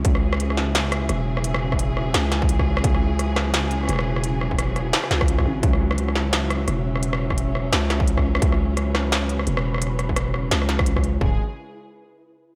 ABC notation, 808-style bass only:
X:1
M:4/4
L:1/8
Q:"Swing 16ths" 1/4=172
K:C#m
V:1 name="808-style bass" clef=bass
C,,6 E,,,2- | E,,,4 C,,4 | C,,6 E,,,2- | E,,,4 z C,,2 G,,, |
C,,6 E,,,2- | E,,,4 C,,4 | C,,6 E,,,2- | E,,,4 C,,4 |
C,,, z6 z |]